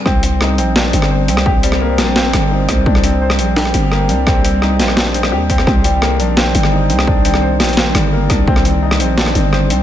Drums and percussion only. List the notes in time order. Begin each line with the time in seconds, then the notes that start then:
0.06 kick, cross-stick
0.23 closed hi-hat
0.41 cross-stick
0.58 closed hi-hat
0.76 cross-stick, snare
0.93 closed hi-hat
1.02 cross-stick
1.28 closed hi-hat
1.37 cross-stick
1.46 kick
1.63 closed hi-hat
1.72 cross-stick
1.98 cross-stick, snare, closed hi-hat
2.16 snare
2.33 cross-stick, closed hi-hat
2.69 kick, cross-stick, closed hi-hat
2.86 kick
2.95 cross-stick
3.04 closed hi-hat
3.30 cross-stick
3.39 closed hi-hat
3.56 snare
3.65 cross-stick
3.74 closed hi-hat
3.92 cross-stick
4.09 closed hi-hat
4.27 kick, cross-stick
4.45 closed hi-hat
4.62 cross-stick
4.79 snare, closed hi-hat
4.88 cross-stick
4.97 snare
5.14 closed hi-hat
5.23 cross-stick
5.50 kick, closed hi-hat
5.58 cross-stick
5.67 kick, cross-stick
5.84 closed hi-hat
6.02 cross-stick
6.20 closed hi-hat
6.37 cross-stick, snare
6.55 closed hi-hat
6.63 cross-stick
6.90 closed hi-hat
6.99 cross-stick
7.07 kick
7.25 closed hi-hat
7.34 cross-stick
7.60 cross-stick, snare, closed hi-hat
7.64 closed hi-hat
7.69 closed hi-hat
7.73 closed hi-hat
7.77 snare
7.95 cross-stick, closed hi-hat
8.30 kick, cross-stick, closed hi-hat
8.48 kick
8.56 cross-stick
8.65 closed hi-hat
8.91 cross-stick
9.00 closed hi-hat
9.18 snare
9.26 cross-stick
9.35 closed hi-hat
9.53 cross-stick
9.70 closed hi-hat